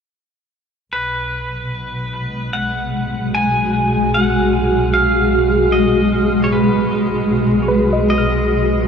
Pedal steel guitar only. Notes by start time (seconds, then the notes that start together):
0.93 B4
2.53 F#5
3.35 G#5
4.14 F#5
4.94 F5
5.72 D#5
6.44 C#5
6.52 B4
8.10 D#5